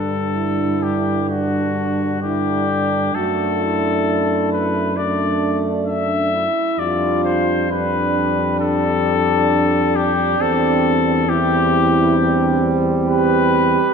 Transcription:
0.00 3.10 G2 medium
0.00 2.17 D3 medium
0.00 0.31 D4 medium
0.00 2.17 D4 medium
0.00 0.84 A4 medium
0.35 1.29 E4 medium
0.83 1.29 G4 medium
1.30 2.22 D4 medium
1.30 2.20 F#4 medium
2.21 3.16 D3 medium
2.21 3.12 D4 medium
2.21 2.68 E4 medium
2.21 3.17 G4 medium
2.68 3.14 D4 medium
3.14 6.47 F#2 medium
3.14 4.96 A3 medium
3.14 4.93 D4 medium
3.14 3.59 F#4 medium
3.14 4.52 A4 medium
3.61 4.97 E4 medium
4.52 4.98 B4 medium
4.97 6.48 A3 medium
4.97 5.86 D4 medium
4.97 6.48 D4 medium
4.97 5.60 D5 medium
5.87 6.32 D4 medium
5.87 6.80 E5 loud
6.32 6.78 E4 medium
6.78 10.35 F2 medium
6.78 7.67 G3 medium
6.78 7.67 D4 medium
6.78 7.71 F4 medium
6.78 7.24 D5 medium
7.24 7.70 C5 medium
7.70 10.35 G3 medium
7.70 10.35 D4 medium
7.70 8.43 D4 medium
7.70 8.59 B4 medium
8.60 11.24 D4 medium
8.60 9.97 A4 loud
9.96 10.43 G4 medium
10.38 13.80 E2 medium
10.38 11.26 G3 medium
10.38 11.26 C4 medium
10.38 11.31 A4 loud
11.27 13.92 G3 medium
11.27 13.80 C4 medium
11.27 12.15 E4 medium
11.27 12.80 G4 loud
12.16 12.61 D4 medium
12.62 13.07 C4 medium
13.07 13.94 G4 medium
13.07 13.94 B4 loud

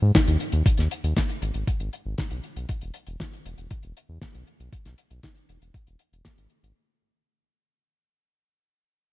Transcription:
0.02 0.12 G#2 medium
0.15 kick loud
0.15 snare loud
0.15 closed hi-hat medium
0.28 0.37 D#2 medium
0.28 closed hi-hat medium
0.40 closed hi-hat medium
0.52 0.63 D#2 medium
0.52 closed hi-hat medium
0.66 kick loud
0.66 closed hi-hat loud
0.77 0.88 D#2 medium
0.77 snare soft
0.77 closed hi-hat medium
0.91 closed hi-hat medium
1.04 1.14 D#2 medium
1.04 closed hi-hat medium
1.17 kick loud
1.17 snare loud
1.17 closed hi-hat loud
1.29 closed hi-hat medium
1.42 1.52 G#1 medium
1.42 closed hi-hat medium
1.54 1.64 G#1 medium
1.54 closed hi-hat medium
1.67 kick loud
1.67 closed hi-hat medium
1.80 1.90 G#1 medium
1.80 closed hi-hat soft
1.93 closed hi-hat medium
2.06 2.15 G#1 medium
2.18 kick medium
2.18 snare loud
2.18 closed hi-hat medium
2.30 2.41 B1 medium
2.30 closed hi-hat medium
2.43 closed hi-hat medium
2.56 2.66 B1 medium
2.56 closed hi-hat medium
2.69 kick loud
2.69 closed hi-hat medium
2.81 2.92 E1 medium
2.81 closed hi-hat medium
2.94 closed hi-hat medium
3.07 3.17 E1 medium
3.07 closed hi-hat soft
3.20 kick loud
3.20 snare loud
3.20 closed hi-hat loud
3.33 closed hi-hat medium
3.45 3.55 E1 medium
3.45 closed hi-hat medium
3.58 3.68 E1 medium
3.58 closed hi-hat medium
3.71 kick loud
3.71 closed hi-hat loud
3.83 3.93 E1 medium
3.83 closed hi-hat medium
3.97 closed hi-hat medium
4.09 4.19 E2 medium
4.22 kick loud
4.22 snare loud
4.22 closed hi-hat loud
4.34 4.44 B1 medium
4.34 closed hi-hat medium
4.47 closed hi-hat medium
4.60 4.70 B1 medium
4.60 closed hi-hat medium
4.73 kick loud
4.73 closed hi-hat loud
4.85 4.95 B1 medium
4.85 snare soft
4.85 closed hi-hat medium
4.98 closed hi-hat medium
5.10 5.20 B1 medium
5.10 closed hi-hat medium
5.23 kick loud
5.23 snare loud
5.23 closed hi-hat loud
5.35 closed hi-hat medium
5.49 5.58 E1 medium
5.49 closed hi-hat medium
5.62 5.71 E1 medium
5.62 closed hi-hat medium
5.74 kick loud
5.74 closed hi-hat medium
5.87 5.97 E1 medium
5.87 closed hi-hat medium
5.99 closed hi-hat medium
6.12 6.22 E1 medium
6.12 closed hi-hat medium
6.25 kick loud
6.25 snare loud
6.25 closed hi-hat medium
6.38 6.47 G#1 medium
6.38 closed hi-hat medium
6.50 closed hi-hat soft
6.63 6.73 G#1 medium
6.63 closed hi-hat medium

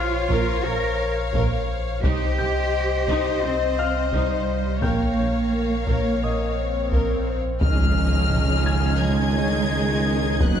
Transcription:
0.00 2.06 A#1 medium
0.00 0.65 F4 medium
0.00 2.03 C5 medium
0.00 2.01 C#5 medium
0.00 2.04 C#5 medium
0.00 2.00 F5 medium
0.00 2.00 F6 medium
0.29 0.37 A#1 medium
0.29 0.62 A#4 medium
0.29 taiko medium
0.64 0.72 A#1 medium
0.64 0.99 A#4 loud
0.64 0.73 C#5 medium
1.34 1.42 A#1 medium
1.34 1.67 A#4 medium
1.34 taiko medium
2.03 2.12 C2 medium
2.03 4.85 C2 medium
2.03 2.37 D#4 medium
2.03 3.40 G4 loud
2.03 4.66 C5 medium
2.03 4.80 C5 medium
2.03 4.66 D#5 medium
2.03 4.84 D#5 medium
2.03 taiko medium
2.38 2.47 C2 medium
2.38 2.47 G4 medium
2.38 4.44 G5 soft
2.38 4.44 G6 soft
3.08 3.17 C2 medium
3.08 3.41 D#4 medium
3.08 taiko medium
3.43 3.52 C2 medium
3.43 4.13 C4 medium
3.43 3.51 G4 medium
3.78 5.84 F5 soft
3.78 5.84 F6 medium
4.12 4.21 C2 medium
4.12 4.82 G3 medium
4.12 4.46 D#4 medium
4.12 taiko medium
4.82 7.61 A#1 medium
4.82 4.91 A#1 medium
4.82 6.92 A#3 medium
4.82 5.15 A#4 medium
4.82 7.42 C#5 medium
4.82 5.45 C#5 medium
4.82 7.38 F5 medium
4.82 5.45 F5 soft
4.82 6.88 G5 soft
4.82 6.88 G6 soft
4.82 taiko medium
4.82 swell medium
5.18 5.26 A#1 soft
5.18 5.26 C#5 soft
5.52 5.85 A#4 medium
5.86 5.96 A#1 medium
5.86 6.20 A#4 medium
5.86 6.21 C#5 medium
5.86 taiko medium
6.22 6.30 A#1 soft
6.22 6.56 A#4 medium
6.22 6.30 C#5 soft
6.22 7.59 D#5 soft
6.22 7.59 D#6 soft
6.54 6.90 C#5 medium
6.90 7.00 A#1 medium
6.90 7.25 A#4 soft
6.90 7.25 A#4 medium
6.90 taiko medium
7.26 7.61 C5 soft
7.61 10.37 C#2 medium
7.61 10.42 C#2 medium
7.61 10.60 D#3 medium
7.61 8.98 F3 medium
7.61 10.38 G#3 medium
7.61 10.37 C#4 medium
7.61 10.60 C#4 medium
7.61 10.60 D#4 medium
7.61 10.37 G#4 medium
7.61 10.60 D#5 medium
7.61 8.97 F6 loud
7.61 taiko medium
7.61 impact medium
8.31 taiko low-mid medium
8.66 10.60 G#5 soft
8.66 10.60 G#6 soft
9.00 10.41 G#3 medium
9.00 10.41 G#6 loud
10.40 10.60 D#1 medium
10.40 10.60 D#2 medium
10.40 10.60 F#3 medium
10.40 10.60 B3 medium
10.40 10.60 B4 medium
10.40 10.60 F#6 loud
10.40 taiko loud

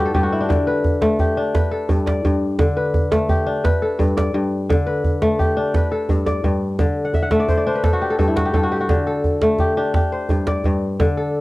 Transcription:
0.00 0.13 G2 medium
0.00 0.93 A3 medium
0.00 0.40 D4 medium
0.00 0.21 F#4 medium
0.00 0.14 G4 medium
0.00 0.67 B4 medium
0.00 0.38 D5 medium
0.05 1.37 A4 medium
0.14 0.54 G2 medium
0.14 1.19 G4 medium
0.14 djembe slap soft
0.14 djembe bass medium
0.23 1.26 F#4 medium
0.32 1.89 E4 medium
0.41 1.37 D4 medium
0.41 djembe slap soft
0.49 1.59 D3 medium
0.49 djembe slap medium
0.49 djembe tone medium
0.49 djembe bass medium
0.67 1.54 B4 medium
0.76 djembe slap soft
0.84 djembe slap soft
0.84 djembe bass medium
0.94 djembe slap soft
1.01 3.01 A3 medium
1.01 djembe slap medium
1.01 djembe tone medium
1.19 2.61 G4 medium
1.19 djembe slap soft
1.19 djembe bass medium
1.37 3.05 D4 medium
1.54 2.76 B4 medium
1.54 djembe slap medium
1.54 djembe tone medium
1.54 djembe bass medium
1.71 3.03 A4 medium
1.89 2.23 G2 medium
1.89 djembe bass medium
2.06 3.17 D5 medium
2.06 djembe slap medium
2.06 djembe tone medium
2.25 2.64 G2 medium
2.25 djembe slap soft
2.25 djembe bass medium
2.34 djembe slap soft
2.59 3.69 D3 medium
2.59 djembe slap medium
2.59 djembe tone medium
2.59 djembe bass medium
2.77 3.64 B4 medium
2.85 djembe slap soft
2.94 djembe slap soft
2.94 djembe bass medium
3.03 djembe slap soft
3.12 5.11 A3 medium
3.12 djembe slap medium
3.12 djembe tone medium
3.29 4.71 G4 medium
3.29 djembe slap soft
3.29 djembe bass medium
3.47 5.15 D4 medium
3.56 djembe slap soft
3.64 4.86 B4 medium
3.64 djembe slap medium
3.64 djembe tone medium
3.64 djembe bass medium
3.82 5.14 A4 medium
3.99 4.33 G2 medium
3.99 djembe bass medium
4.17 5.28 D5 medium
4.17 djembe slap medium
4.17 djembe tone medium
4.34 4.74 G2 medium
4.34 djembe slap soft
4.44 djembe slap soft
4.70 5.78 D3 medium
4.70 djembe slap medium
4.70 djembe tone medium
4.70 djembe bass medium
4.87 5.75 B4 medium
4.96 djembe slap soft
5.04 djembe slap soft
5.04 djembe bass medium
5.13 djembe slap soft
5.22 7.22 A3 medium
5.22 djembe slap medium
5.22 djembe tone medium
5.39 6.80 G4 medium
5.39 djembe slap soft
5.39 djembe bass medium
5.57 7.25 D4 medium
5.66 djembe slap soft
5.74 6.98 B4 medium
5.74 djembe slap medium
5.74 djembe tone medium
5.74 djembe bass medium
5.92 7.23 A4 medium
6.09 6.43 G2 medium
6.09 djembe bass medium
6.26 7.37 D5 medium
6.26 djembe slap medium
6.26 djembe tone medium
6.44 6.83 G2 medium
6.44 djembe slap soft
6.44 djembe bass medium
6.79 7.89 D3 medium
6.79 djembe slap medium
6.79 djembe tone medium
6.79 djembe bass medium
7.05 7.22 F#5 medium
7.14 7.31 E5 medium
7.14 djembe bass medium
7.22 8.08 F#5 medium
7.31 9.31 A3 medium
7.31 8.35 E5 medium
7.31 djembe slap medium
7.31 djembe tone medium
7.40 7.57 D5 medium
7.48 7.66 C5 medium
7.48 djembe bass medium
7.58 8.68 D5 medium
7.67 9.35 D4 medium
7.67 8.85 C5 medium
7.75 8.98 B4 medium
7.84 8.10 A4 medium
7.84 djembe slap medium
7.84 djembe tone medium
7.84 djembe bass medium
7.93 8.25 F#4 medium
8.02 8.42 G4 medium
8.10 8.18 A4 medium
8.10 djembe slap soft
8.19 8.53 G2 medium
8.19 8.54 A4 medium
8.19 djembe bass medium
8.28 9.84 E4 medium
8.36 8.60 F#4 medium
8.36 djembe slap medium
8.36 djembe tone medium
8.45 8.69 G4 medium
8.45 djembe slap soft
8.54 8.94 G2 medium
8.54 9.06 A4 medium
8.54 djembe slap soft
8.54 djembe bass medium
8.63 8.80 F#4 medium
8.71 9.59 G4 medium
8.71 djembe slap soft
8.80 9.66 F#4 medium
8.89 9.99 D3 medium
8.89 djembe slap medium
8.89 djembe tone medium
8.89 djembe bass medium
9.07 10.38 A4 medium
9.16 djembe slap soft
9.24 djembe slap soft
9.24 djembe bass medium
9.33 djembe slap soft
9.41 11.41 A3 medium
9.41 djembe slap medium
9.41 djembe tone medium
9.59 9.77 G4 medium
9.59 djembe slap soft
9.59 djembe bass medium
9.77 11.41 D4 medium
9.77 9.95 G4 medium
9.86 djembe slap soft
9.94 11.36 G4 medium
9.94 djembe slap medium
9.94 djembe tone medium
9.94 djembe bass medium
10.12 11.31 C5 medium
10.29 10.64 G2 medium
10.29 djembe bass medium
10.47 11.41 D5 medium
10.47 djembe slap medium
10.47 djembe tone medium
10.64 11.04 G2 medium
10.64 djembe slap soft
10.64 djembe bass medium
11.00 11.41 D3 medium
11.00 djembe slap medium
11.00 djembe tone medium
11.00 djembe bass medium
11.17 11.41 A4 medium
11.26 djembe slap soft
11.35 djembe slap soft

